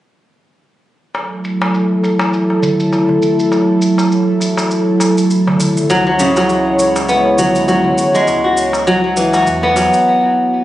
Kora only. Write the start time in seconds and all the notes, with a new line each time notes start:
5.90 F#3
6.07 F#3
6.20 C#3
6.37 F#3
7.09 B3
7.38 F#3
7.68 F#3
8.15 G#3
8.44 F#4
8.87 F#3
9.04 F#3
9.17 E3
9.34 F#4
9.63 B3
9.76 F#3